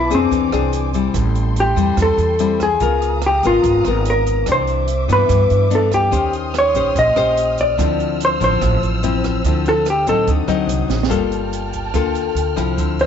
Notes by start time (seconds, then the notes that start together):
Already playing: B2 E4 B4 A5 D6
0.10 F2 C4 D4 G#4, kick, closed hi-hat, shaker
0.15 C4
0.31 E2 E3 C5 G#5, kick, closed hi-hat, shaker
0.52 C2 C4 D4 G#4, cross-stick, closed hi-hat, shaker
0.73 closed hi-hat, shaker
0.93 G3 C4 E4, kick, closed hi-hat, shaker
1.13 A1 A2 A4 G5 C6, kick, cross-stick, closed hi-hat, shaker
1.35 closed hi-hat, shaker
1.56 closed hi-hat
1.60 G4
1.76 E2 G3 C4 E4, kick, closed hi-hat, shaker
1.97 E2 E3, kick, cross-stick, closed hi-hat, shaker
2.02 A4
2.18 E2, closed hi-hat, shaker
2.39 G3 C4 E4, closed hi-hat
2.60 G#4, kick, cross-stick, closed hi-hat, shaker
2.80 C#2 C#3 B3 F4 A#4 F5 A#5 D#6, kick, closed hi-hat, shaker
3.02 closed hi-hat, shaker
3.22 cross-stick, closed hi-hat
3.26 G4
3.43 G#1 B3 F4 A#4, kick, closed hi-hat, shaker
3.63 G#1 G#2, kick, closed hi-hat, shaker
3.85 G#1 B3 F4 A#4, cross-stick, closed hi-hat, shaker
4.05 closed hi-hat
4.10 A#4
4.26 kick, closed hi-hat, shaker
4.46 C2 C3 E3 D4 E5 D6, kick, cross-stick, closed hi-hat, shaker
4.52 C5
4.67 closed hi-hat, shaker
4.88 closed hi-hat
5.08 G2 E3 B3 D4, kick, closed hi-hat, shaker
5.13 B4
5.29 G2, kick, cross-stick, closed hi-hat, shaker
5.50 G2, closed hi-hat, shaker
5.70 E3 B3 D4, closed hi-hat
5.75 A4
5.92 G4, kick, cross-stick, closed hi-hat, shaker
6.11 D#2 D#3 C#4 G4 C5 G5 C6 D#6 F6, kick, closed hi-hat, shaker
6.33 closed hi-hat, shaker
6.54 cross-stick, closed hi-hat
6.59 C#5
6.74 A#1 C#4 G4 C5, kick, closed hi-hat, shaker
6.95 A#1 A#2 D#5, kick, closed hi-hat, shaker
7.16 A#1 C#4 G4 C5, cross-stick, closed hi-hat, shaker
7.37 closed hi-hat
7.58 D5, kick, closed hi-hat, shaker
7.76 D2 D3 F3 C4 E4 C5 E6, kick, cross-stick, closed hi-hat, shaker
8.00 closed hi-hat, shaker
8.20 closed hi-hat, shaker
8.25 C5
8.40 A1 F3 C4 E4 C5, kick, closed hi-hat, shaker
8.61 A1 A2, kick, cross-stick, closed hi-hat, shaker
8.82 A1, closed hi-hat, shaker
9.03 F3 C4 E4, closed hi-hat, shaker
9.24 kick, cross-stick, closed hi-hat, shaker
9.44 D2 D3 F3 C4 E4, kick, closed hi-hat, shaker
9.66 A4, closed hi-hat, shaker
9.85 cross-stick, closed hi-hat, shaker
9.90 G4
10.07 A1 F#3 C4 D#4 A4, kick, closed hi-hat, shaker
10.26 D2 D3 C5 F#5 D#6, kick, closed hi-hat, shaker
10.47 D2 F#3 C4 D#4, cross-stick, closed hi-hat, shaker
10.67 C2, closed hi-hat, shaker
10.88 A1, snare, shaker
11.03 snare
11.08 G1 G3 A#3 F4 A4 G5 A5 F6, kick, cross-stick, closed hi-hat, shaker
11.32 closed hi-hat, shaker
11.53 closed hi-hat, shaker
11.73 kick, closed hi-hat, shaker
11.94 D2 D3 A#3 F4 A4, kick, cross-stick, closed hi-hat, shaker
12.15 closed hi-hat, shaker
12.35 D2, closed hi-hat
12.56 C2 F3 C4 E4, kick, cross-stick, closed hi-hat, shaker
12.77 D2 D3 C5 E6, kick, closed hi-hat, shaker
12.99 C5, closed hi-hat, shaker